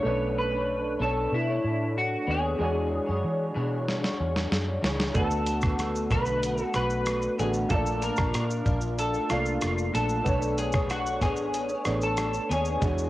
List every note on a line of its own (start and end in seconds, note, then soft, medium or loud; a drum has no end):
0.00 2.55 A3 medium
0.00 0.52 B3 medium
0.00 0.38 C#5 loud
0.04 0.96 B1 medium
0.04 2.56 C#4 medium
0.04 0.52 D4 medium
0.04 2.57 D4 medium
0.04 0.52 A4 medium
0.04 2.58 B4 medium
0.04 0.49 C#5 medium
0.38 1.01 B4 medium
0.51 0.99 D4 soft
0.51 1.01 A4 soft
0.51 0.99 C#5 medium
1.00 1.26 B1 medium
1.00 1.48 B3 medium
1.00 1.48 D4 medium
1.00 1.48 A4 medium
1.00 1.34 A4 medium
1.00 1.46 C#5 medium
1.32 1.58 B2 loud
1.32 1.97 E4 medium
1.47 2.29 A4 soft
1.47 2.30 C#5 soft
1.51 2.28 D4 soft
1.64 2.15 A2 medium
1.98 2.30 F#4 medium
2.27 2.54 D#2 medium
2.27 2.60 B3 medium
2.27 2.58 D4 medium
2.27 4.17 G#4 medium
2.27 2.60 C#5 medium
2.58 2.98 E2 medium
2.58 3.07 E3 medium
2.58 5.11 G#3 medium
2.58 3.07 D4 medium
2.58 5.12 D4 medium
2.58 5.12 F#4 medium
2.58 3.07 G#4 medium
2.58 3.05 C#5 medium
2.64 5.13 C#5 medium
3.06 3.21 F#2 medium
3.06 3.55 D4 soft
3.06 3.55 G#4 medium
3.06 3.55 C#5 medium
3.24 3.50 E3 medium
3.54 4.07 B2 medium
3.54 4.03 E3 medium
3.54 4.04 D4 medium
3.54 4.04 G#4 medium
3.54 4.02 C#5 loud
3.88 snare soft
4.03 4.82 D4 soft
4.03 4.83 G#4 soft
4.03 4.83 C#5 medium
4.03 snare medium
4.20 4.46 E2 medium
4.36 snare medium
4.52 4.77 F#2 medium
4.52 snare medium
4.82 5.09 C#2 medium
4.82 5.14 E3 medium
4.82 5.15 D4 medium
4.82 5.16 G#4 medium
4.82 5.16 C#5 loud
4.82 snare medium
5.00 snare medium
5.14 6.07 D2 loud
5.14 5.63 D3 medium
5.14 7.34 A3 medium
5.14 5.63 A3 medium
5.14 5.64 B3 medium
5.14 7.35 D4 medium
5.14 5.62 F#4 medium
5.14 7.36 F#4 medium
5.14 6.12 A4 medium
5.14 kick medium
5.14 closed hi-hat medium
5.14 shaker medium
5.19 7.37 B4 medium
5.31 shaker soft
5.46 closed hi-hat medium
5.46 shaker medium
5.61 6.12 B3 soft
5.61 6.11 F#4 soft
5.61 kick medium
5.61 cross-stick loud
5.61 shaker medium
5.67 6.11 A3 soft
5.79 cross-stick medium
5.79 closed hi-hat medium
5.79 shaker medium
5.95 shaker soft
6.11 6.62 B1 medium
6.11 6.59 D3 medium
6.11 6.60 A3 medium
6.11 6.60 B3 medium
6.11 6.57 F#4 medium
6.11 6.62 B4 loud
6.11 kick medium
6.11 cross-stick medium
6.11 closed hi-hat soft
6.11 shaker soft
6.26 shaker soft
6.43 closed hi-hat medium
6.43 shaker medium
6.58 7.39 B3 soft
6.58 7.39 F#4 medium
6.58 shaker soft
6.62 7.39 A3 soft
6.62 6.75 A4 loud
6.74 7.27 B1 medium
6.74 7.35 B4 loud
6.74 cross-stick medium
6.74 closed hi-hat soft
6.74 shaker soft
6.90 shaker soft
7.06 cross-stick medium
7.06 closed hi-hat medium
7.06 shaker medium
7.22 shaker soft
7.38 7.65 A1 medium
7.38 7.71 D3 medium
7.38 7.71 A3 soft
7.38 7.70 A3 medium
7.38 7.72 B3 medium
7.38 7.71 D4 soft
7.38 7.72 F#4 soft
7.38 7.72 F#4 medium
7.38 7.48 G#4 medium
7.38 7.72 B4 soft
7.38 closed hi-hat soft
7.38 shaker soft
7.54 shaker soft
7.69 8.09 A#1 medium
7.69 8.19 A#2 medium
7.69 8.19 A3 medium
7.69 9.26 A#3 medium
7.69 8.19 D4 medium
7.69 9.27 F4 medium
7.69 8.03 A4 medium
7.69 9.28 A5 medium
7.69 kick medium
7.69 closed hi-hat medium
7.69 shaker medium
7.73 8.16 F4 medium
7.73 9.29 D5 medium
7.86 shaker medium
8.02 8.99 A#4 medium
8.02 closed hi-hat medium
8.02 shaker medium
8.16 8.32 A#1 medium
8.16 8.65 D4 soft
8.16 8.66 F4 soft
8.16 kick medium
8.16 cross-stick loud
8.16 shaker medium
8.34 8.61 A#2 loud
8.34 cross-stick medium
8.34 closed hi-hat medium
8.34 shaker medium
8.51 shaker soft
8.65 9.18 A#1 medium
8.65 9.14 A#2 medium
8.65 9.14 D4 medium
8.65 9.12 F4 medium
8.65 kick medium
8.65 closed hi-hat soft
8.65 shaker soft
8.81 shaker medium
8.99 9.32 A4 medium
8.99 closed hi-hat medium
8.99 shaker medium
9.13 9.95 D4 soft
9.13 9.94 F4 soft
9.13 shaker soft
9.17 9.94 A3 soft
9.30 9.57 C2 medium
9.30 10.26 A#3 soft
9.30 10.26 F4 soft
9.30 9.91 F4 medium
9.30 10.27 A4 soft
9.30 10.27 D5 soft
9.30 cross-stick medium
9.30 closed hi-hat medium
9.30 shaker soft
9.46 shaker soft
9.61 9.89 F1 medium
9.61 cross-stick medium
9.61 closed hi-hat medium
9.61 shaker medium
9.78 shaker soft
9.93 10.20 A#1 medium
9.93 10.26 A#2 medium
9.93 10.25 A3 medium
9.93 10.25 D4 medium
9.93 10.27 F4 medium
9.93 10.58 A4 medium
9.93 closed hi-hat soft
9.93 shaker soft
10.09 shaker medium
10.24 11.21 B1 loud
10.24 11.84 A3 medium
10.24 11.82 B3 medium
10.24 10.74 B3 medium
10.24 11.83 D4 medium
10.24 10.74 D4 medium
10.24 10.75 A4 medium
10.24 10.73 C#5 medium
10.24 kick medium
10.24 closed hi-hat medium
10.24 shaker medium
10.29 11.84 C#5 medium
10.42 shaker medium
10.58 10.88 G#4 medium
10.58 closed hi-hat medium
10.58 shaker medium
10.72 11.23 A4 soft
10.72 11.22 C#5 medium
10.72 kick medium
10.72 cross-stick medium
10.72 shaker medium
10.78 11.22 D4 soft
10.90 11.22 F#4 medium
10.90 cross-stick medium
10.90 closed hi-hat medium
10.90 shaker medium
11.07 shaker medium
11.21 11.73 A1 medium
11.21 11.70 B3 medium
11.21 11.71 D4 medium
11.21 12.03 G#4 medium
11.21 11.68 C#5 medium
11.21 kick medium
11.21 cross-stick medium
11.21 closed hi-hat soft
11.21 shaker soft
11.36 shaker soft
11.54 closed hi-hat medium
11.54 shaker medium
11.69 12.50 C#5 soft
11.69 shaker soft
11.74 12.50 D4 soft
11.85 12.38 A1 medium
11.85 12.83 A3 soft
11.85 12.82 B3 soft
11.85 12.80 D4 soft
11.85 12.83 C#5 medium
11.85 cross-stick medium
11.85 closed hi-hat soft
11.85 shaker soft
12.01 12.51 A4 medium
12.01 shaker soft
12.17 cross-stick medium
12.17 closed hi-hat medium
12.17 shaker medium
12.34 shaker soft
12.49 12.76 D#2 medium
12.49 12.82 B3 medium
12.49 12.81 D4 medium
12.49 13.10 G#4 medium
12.49 12.83 C#5 loud
12.49 closed hi-hat soft
12.49 shaker soft
12.65 shaker medium
12.80 13.10 E2 loud
12.80 13.10 E3 medium
12.80 13.10 G#3 medium
12.80 13.10 D4 medium
12.80 13.10 F#4 medium
12.80 13.10 G#4 medium
12.80 13.10 C#5 medium
12.80 kick medium
12.80 closed hi-hat medium
12.80 shaker medium
12.85 13.10 C#5 medium
12.98 shaker medium